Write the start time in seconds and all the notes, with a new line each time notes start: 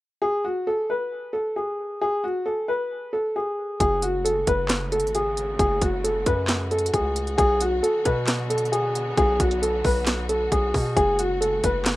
0.22 G#4
0.45 F#4
0.67 A4
0.90 B4
1.33 A4
1.56 G#4
2.01 G#4
2.24 F#4
2.46 A4
2.68 B4
3.13 A4
3.36 G#4
3.80 F#1 C#3 G#3 A3 F#4 G#4, kick, closed hi-hat
4.02 F#4, closed hi-hat
4.25 A4, closed hi-hat
4.47 F#1 B4, kick, closed hi-hat
4.69 snare, clap, closed hi-hat
4.92 A4, closed hi-hat
5.00 G#1, closed hi-hat
5.07 closed hi-hat
5.15 G#4, closed hi-hat
5.37 closed hi-hat
5.59 F#1 G#4, kick, closed hi-hat
5.82 F#1 F#4, kick, closed hi-hat
6.04 A4, closed hi-hat
6.26 F#2 B4, kick, closed hi-hat
6.48 snare, clap, closed hi-hat
6.71 A4, closed hi-hat
6.79 closed hi-hat
6.86 closed hi-hat
6.93 C#2 G#4, kick, closed hi-hat
7.16 closed hi-hat
7.27 closed hi-hat
7.38 B1 D3 F#3 B3 G#4, kick, closed hi-hat
7.61 F#4, closed hi-hat
7.83 A4, closed hi-hat
8.05 B2 B4, kick, closed hi-hat
8.27 snare, clap, closed hi-hat
8.50 A4, closed hi-hat
8.58 closed hi-hat
8.65 closed hi-hat
8.72 G#4, closed hi-hat
8.95 closed hi-hat
9.17 B1 G#4, kick, closed hi-hat
9.40 B1 F#4, kick, closed hi-hat
9.51 closed hi-hat
9.62 A4, closed hi-hat
9.84 B1 B4, kick, open hi-hat
10.06 snare, clap, closed hi-hat
10.29 A4, closed hi-hat
10.52 B1 G#4, kick, closed hi-hat
10.74 B2, kick, open hi-hat
10.96 F#1 C#3 G#3 A3 G#4, kick, closed hi-hat
11.19 F#4, closed hi-hat
11.41 A4, closed hi-hat
11.64 F#1 B4, kick, closed hi-hat
11.86 snare, clap, closed hi-hat